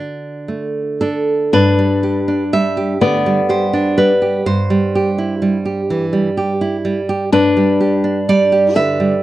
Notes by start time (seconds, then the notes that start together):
Already playing: D3 D4 F#4
0.48 A3
1.01 D4 A4
1.53 G2 D4 B4
1.79 G3
2.03 G4
2.28 D4
2.53 G3 E5
2.77 G4
3.01 D3 B3 D5
3.26 G3
3.49 G4 C5
3.73 D4
3.98 G3 B4
4.22 G4
4.46 G2 C5
4.70 G3
4.95 G4
5.18 E4
5.42 G3
5.65 G4
5.90 E3
6.13 G3
6.37 G4
6.61 E4
6.85 G3
7.09 G4
7.32 G2 D4 B4
7.57 G3
7.81 G4
8.04 D4
8.29 G3 D5
8.52 G4
8.76 D3 B4 E5
9.00 G3